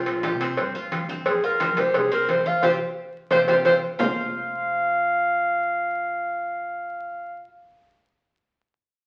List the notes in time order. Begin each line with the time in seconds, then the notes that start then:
Already playing: C4 F4
0.06 A#1, cowbell, high conga
0.23 G4, cowbell, high conga
0.32 C3
0.40 C4, cowbell, high conga
0.57 G2, cowbell
0.75 G2 F4, high conga
0.92 cowbell, high conga
1.01 G2
1.09 C4, high conga
1.26 F2 G#4, cowbell
1.44 E2 F4 A#4, high conga
1.60 C5, cowbell, high conga
1.69 F3
1.77 G4 C5, cowbell, low conga
1.94 C2 G#4, cowbell, high conga, low conga
2.11 C2 C4 A#4, high conga
2.29 C5, cowbell, high conga
2.37 G2
2.45 F4 F5, high conga
2.63 C2 C4 F4 G4 C5, cowbell, high conga
3.30 C2 C4 F4 G4 C5, cowbell, high conga
3.48 C2 C4 F4 G4 C5, cowbell, high conga
3.64 C2 C4 F4 G4 C5, cowbell, high conga
3.98 F1 F4 C5 F5, low bongo, low conga